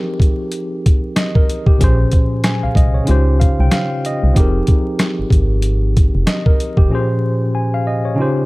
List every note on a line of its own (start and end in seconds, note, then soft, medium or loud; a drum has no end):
0.00 1.75 F3 medium
0.00 1.76 C4 medium
0.00 1.76 D#4 medium
0.00 1.14 G4 medium
0.00 1.14 G#4 medium
0.00 1.15 A#4 medium
0.20 kick medium
0.20 closed hi-hat medium
0.52 closed hi-hat medium
0.86 kick medium
0.86 closed hi-hat medium
1.16 1.34 D#5 medium
1.16 cross-stick medium
1.16 snare loud
1.16 closed hi-hat medium
1.35 1.66 A#4 medium
1.35 kick medium
1.50 closed hi-hat medium
1.66 1.97 G4 medium
1.66 kick loud
1.77 3.04 A#2 medium
1.77 3.05 F3 medium
1.77 3.04 C#4 medium
1.77 kick loud
1.77 closed hi-hat medium
1.81 2.06 A#1 loud
1.81 3.07 G#4 medium
1.81 2.45 C5 medium
2.12 kick medium
2.12 closed hi-hat medium
2.44 2.62 G#5 medium
2.44 cross-stick medium
2.44 snare loud
2.44 closed hi-hat loud
2.63 2.69 C2 soft
2.63 2.76 F5 medium
2.75 3.00 C2 medium
2.75 2.94 D#5 medium
2.75 kick medium
2.75 closed hi-hat medium
2.94 3.25 C#5 medium
3.04 4.31 C#3 medium
3.04 4.32 C#4 medium
3.04 4.33 D#4 medium
3.04 closed hi-hat medium
3.08 3.48 C#2 loud
3.08 4.33 F4 medium
3.08 4.34 G4 medium
3.08 4.35 C5 medium
3.40 3.57 F5 medium
3.40 kick medium
3.40 closed hi-hat medium
3.60 3.70 C2 loud
3.60 3.72 G5 medium
3.71 4.01 F5 medium
3.71 cross-stick medium
3.71 snare loud
3.71 closed hi-hat medium
4.05 4.35 D#5 medium
4.05 closed hi-hat medium
4.23 4.33 C2 medium
4.33 4.61 F1 loud
4.33 6.86 F3 medium
4.33 6.87 C4 medium
4.33 6.87 D#4 medium
4.33 kick loud
4.33 closed hi-hat medium
4.37 6.24 G4 medium
4.37 6.25 G#4 medium
4.37 6.26 A#4 medium
4.67 kick medium
4.67 closed hi-hat medium
4.99 cross-stick medium
4.99 snare loud
4.99 closed hi-hat loud
5.19 5.24 G#1 soft
5.30 6.10 G#1 medium
5.30 kick medium
5.30 closed hi-hat medium
5.62 closed hi-hat medium
5.97 kick medium
5.97 closed hi-hat medium
6.15 6.25 F1 medium
6.27 6.45 D#5 medium
6.27 cross-stick medium
6.27 snare loud
6.27 closed hi-hat medium
6.46 6.76 A#4 medium
6.46 kick medium
6.60 closed hi-hat medium
6.77 6.88 F1 loud
6.77 7.08 G4 medium
6.77 kick loud
6.88 8.15 A#2 medium
6.88 8.16 F3 medium
6.88 8.15 C#4 medium
6.93 8.17 G#4 medium
6.93 7.56 C5 medium
7.55 7.73 G#5 medium
7.74 7.87 F5 medium
7.87 8.05 D#5 medium
8.05 8.36 C#5 medium
8.15 8.46 C#3 medium
8.15 8.46 C#4 medium
8.15 8.46 D#4 medium
8.19 8.46 F4 medium
8.19 8.46 G4 medium
8.19 8.46 C5 medium